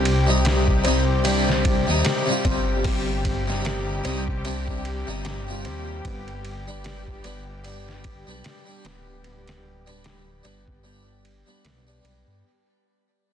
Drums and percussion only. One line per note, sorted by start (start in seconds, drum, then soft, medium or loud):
0.05 ride medium
0.45 snare loud
0.45 ride medium
0.68 kick medium
0.85 ride medium
1.25 ride medium
1.49 snare soft
1.65 kick medium
1.65 ride medium
2.05 snare loud
2.05 ride medium
2.45 kick medium
2.45 ride medium
2.84 kick loud
2.84 open hi-hat medium
3.25 kick medium
3.25 ride medium
3.49 snare soft
3.65 snare loud
3.65 ride medium
4.05 ride medium
4.28 kick medium
4.45 ride medium
4.68 kick medium
4.85 ride medium
5.25 snare loud
5.25 ride medium
5.65 ride medium
6.05 kick loud
6.05 ride medium
6.28 ride soft
6.45 ride medium
6.84 snare loud
6.84 ride medium
7.07 kick medium
7.24 ride medium
7.64 ride medium
7.89 snare soft
8.04 kick medium
8.04 ride medium
8.44 snare loud
8.44 ride medium
8.85 snare medium
8.85 ride medium
9.24 ride medium
9.48 snare medium
9.48 ride medium
9.87 ride soft
10.04 snare loud
10.04 ride medium
10.45 ride medium
10.68 kick medium
11.25 ride medium
11.65 snare loud
11.65 ride medium
12.05 ride medium